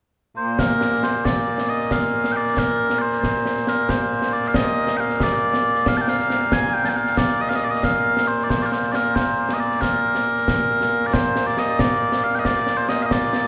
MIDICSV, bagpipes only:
0, 0, Header, 1, 2, 480
1, 0, Start_track
1, 0, Key_signature, -2, "major"
1, 0, Tempo, 439560
1, 639, Time_signature, 6, 3, 24, 8
1, 14714, End_track
2, 0, Start_track
2, 0, Title_t, "Bagpipes"
2, 0, Program_c, 0, 109
2, 403, Note_on_c, 0, 46, 89
2, 403, Note_on_c, 0, 58, 89
2, 403, Note_on_c, 0, 72, 75
2, 644, Note_off_c, 0, 72, 0
2, 644, Note_on_c, 0, 70, 84
2, 1130, Note_off_c, 0, 70, 0
2, 1130, Note_on_c, 0, 72, 80
2, 1365, Note_off_c, 0, 72, 0
2, 1365, Note_on_c, 0, 74, 84
2, 1847, Note_off_c, 0, 74, 0
2, 1847, Note_on_c, 0, 75, 81
2, 2098, Note_off_c, 0, 75, 0
2, 2098, Note_on_c, 0, 77, 88
2, 2532, Note_off_c, 0, 77, 0
2, 2532, Note_on_c, 0, 79, 80
2, 2581, Note_off_c, 0, 79, 0
2, 2581, Note_on_c, 0, 74, 80
2, 2823, Note_off_c, 0, 74, 0
2, 2823, Note_on_c, 0, 70, 83
2, 3261, Note_off_c, 0, 70, 0
2, 3261, Note_on_c, 0, 74, 83
2, 3296, Note_off_c, 0, 74, 0
2, 3296, Note_on_c, 0, 72, 83
2, 4023, Note_off_c, 0, 72, 0
2, 4023, Note_on_c, 0, 70, 80
2, 4253, Note_off_c, 0, 70, 0
2, 4253, Note_on_c, 0, 72, 84
2, 4731, Note_off_c, 0, 72, 0
2, 4731, Note_on_c, 0, 74, 84
2, 4887, Note_off_c, 0, 74, 0
2, 4887, Note_on_c, 0, 77, 72
2, 4975, Note_off_c, 0, 77, 0
2, 4975, Note_on_c, 0, 75, 97
2, 5426, Note_off_c, 0, 75, 0
2, 5426, Note_on_c, 0, 79, 87
2, 5462, Note_off_c, 0, 79, 0
2, 5462, Note_on_c, 0, 77, 87
2, 5709, Note_off_c, 0, 77, 0
2, 5709, Note_on_c, 0, 74, 90
2, 6420, Note_off_c, 0, 74, 0
2, 6420, Note_on_c, 0, 77, 99
2, 6519, Note_off_c, 0, 77, 0
2, 6519, Note_on_c, 0, 81, 70
2, 6565, Note_off_c, 0, 81, 0
2, 6565, Note_on_c, 0, 79, 70
2, 6650, Note_off_c, 0, 79, 0
2, 6650, Note_on_c, 0, 77, 106
2, 7130, Note_off_c, 0, 77, 0
2, 7130, Note_on_c, 0, 80, 91
2, 7359, Note_off_c, 0, 80, 0
2, 7359, Note_on_c, 0, 79, 98
2, 7482, Note_off_c, 0, 79, 0
2, 7482, Note_on_c, 0, 81, 70
2, 7521, Note_off_c, 0, 81, 0
2, 7521, Note_on_c, 0, 79, 70
2, 7607, Note_off_c, 0, 79, 0
2, 7607, Note_on_c, 0, 77, 86
2, 7832, Note_off_c, 0, 77, 0
2, 7832, Note_on_c, 0, 74, 97
2, 8088, Note_off_c, 0, 74, 0
2, 8088, Note_on_c, 0, 75, 103
2, 8179, Note_off_c, 0, 75, 0
2, 8179, Note_on_c, 0, 77, 70
2, 8250, Note_off_c, 0, 77, 0
2, 8250, Note_on_c, 0, 75, 108
2, 8342, Note_off_c, 0, 75, 0
2, 8342, Note_on_c, 0, 74, 60
2, 8409, Note_off_c, 0, 74, 0
2, 8409, Note_on_c, 0, 75, 96
2, 8564, Note_off_c, 0, 75, 0
2, 8564, Note_on_c, 0, 77, 94
2, 9035, Note_off_c, 0, 77, 0
2, 9035, Note_on_c, 0, 72, 88
2, 9216, Note_off_c, 0, 72, 0
2, 9216, Note_on_c, 0, 74, 66
2, 9284, Note_off_c, 0, 74, 0
2, 9284, Note_on_c, 0, 72, 96
2, 9420, Note_off_c, 0, 72, 0
2, 9420, Note_on_c, 0, 74, 57
2, 9457, Note_off_c, 0, 74, 0
2, 9457, Note_on_c, 0, 70, 57
2, 9522, Note_off_c, 0, 70, 0
2, 9522, Note_on_c, 0, 72, 86
2, 9740, Note_off_c, 0, 72, 0
2, 9740, Note_on_c, 0, 74, 92
2, 9777, Note_off_c, 0, 74, 0
2, 9777, Note_on_c, 0, 70, 92
2, 9995, Note_off_c, 0, 70, 0
2, 9995, Note_on_c, 0, 72, 81
2, 10413, Note_off_c, 0, 72, 0
2, 10413, Note_on_c, 0, 75, 59
2, 10476, Note_off_c, 0, 75, 0
2, 10476, Note_on_c, 0, 74, 79
2, 10713, Note_off_c, 0, 74, 0
2, 10713, Note_on_c, 0, 70, 85
2, 12084, Note_off_c, 0, 70, 0
2, 12084, Note_on_c, 0, 74, 70
2, 12161, Note_off_c, 0, 74, 0
2, 12161, Note_on_c, 0, 72, 96
2, 12525, Note_off_c, 0, 72, 0
2, 12525, Note_on_c, 0, 74, 95
2, 12650, Note_off_c, 0, 74, 0
2, 12650, Note_on_c, 0, 75, 94
2, 12882, Note_off_c, 0, 75, 0
2, 12882, Note_on_c, 0, 74, 94
2, 13361, Note_off_c, 0, 74, 0
2, 13361, Note_on_c, 0, 77, 107
2, 13486, Note_off_c, 0, 77, 0
2, 13486, Note_on_c, 0, 79, 75
2, 13531, Note_off_c, 0, 79, 0
2, 13531, Note_on_c, 0, 75, 75
2, 13602, Note_off_c, 0, 75, 0
2, 13602, Note_on_c, 0, 74, 116
2, 13946, Note_off_c, 0, 74, 0
2, 13946, Note_on_c, 0, 72, 97
2, 14074, Note_off_c, 0, 72, 0
2, 14074, Note_on_c, 0, 75, 100
2, 14222, Note_off_c, 0, 75, 0
2, 14222, Note_on_c, 0, 77, 80
2, 14257, Note_off_c, 0, 77, 0
2, 14257, Note_on_c, 0, 75, 80
2, 14326, Note_off_c, 0, 75, 0
2, 14326, Note_on_c, 0, 74, 94
2, 14714, Note_off_c, 0, 46, 0
2, 14714, Note_off_c, 0, 58, 0
2, 14714, Note_off_c, 0, 74, 0
2, 14714, End_track
0, 0, End_of_file